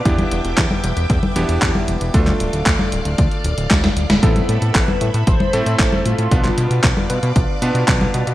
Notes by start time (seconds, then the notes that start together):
Already playing: B4 D6
0.05 E2 B3 D4 E4 G4 E5 G5, kick, closed hi-hat
0.18 closed hi-hat, high conga
0.31 E1, closed hi-hat
0.44 E1, closed hi-hat
0.58 E2, kick, clap, closed hi-hat
0.71 high conga
0.84 E1, closed hi-hat
0.97 E1, closed hi-hat
1.10 E2, kick, closed hi-hat
1.23 high conga
1.36 E1 B3 D4 E4 G4, closed hi-hat
1.49 E1, closed hi-hat
1.62 E2, kick, clap, closed hi-hat
1.75 high conga
1.88 E1, closed hi-hat
2.01 E1, closed hi-hat
2.14 D2 A3 D4 F4 A4 D5 F5, kick, closed hi-hat
2.27 clap, closed hi-hat, high conga
2.40 D1, closed hi-hat
2.53 D1, closed hi-hat
2.66 D2, kick, clap, closed hi-hat
2.79 high conga
2.92 D1, closed hi-hat
3.05 D1, closed hi-hat
3.18 D2, kick, closed hi-hat
3.31 closed hi-hat
3.44 D1, closed hi-hat
3.57 D1, closed hi-hat
3.71 D2, kick, snare, clap, closed hi-hat
3.84 snare, closed hi-hat, high conga
3.97 D1, closed hi-hat
4.10 D1, snare, closed hi-hat, high conga
4.23 A1 B3 C4 E4 A4 E5 B5, kick, closed hi-hat
4.36 closed hi-hat, high conga
4.49 A2, closed hi-hat
4.62 A2, closed hi-hat
4.75 A1 B4, kick, clap, closed hi-hat
4.88 high conga
5.01 A2, closed hi-hat
5.14 A2, closed hi-hat
5.27 A1 C5, kick, closed hi-hat
5.40 high conga
5.53 A2 A3 C4 E4 A4, closed hi-hat
5.66 A2, closed hi-hat
5.79 A1, kick, clap, closed hi-hat
5.92 high conga
6.05 A2 F4, closed hi-hat
6.18 A2, closed hi-hat
6.31 B1 B3 D4 F4 B4 D5 F5 D6, kick, closed hi-hat
6.45 clap, closed hi-hat, high conga
6.58 B2, closed hi-hat
6.71 B2, closed hi-hat
6.84 B1, kick, clap, closed hi-hat
6.97 high conga
7.10 B2, closed hi-hat
7.23 B2, closed hi-hat
7.36 B1, kick, closed hi-hat
7.62 B2 B3 D4 F4 B4, closed hi-hat
7.75 B2, closed hi-hat
7.88 B1, kick, clap, closed hi-hat
8.01 high conga
8.14 B2, closed hi-hat
8.27 B2, closed hi-hat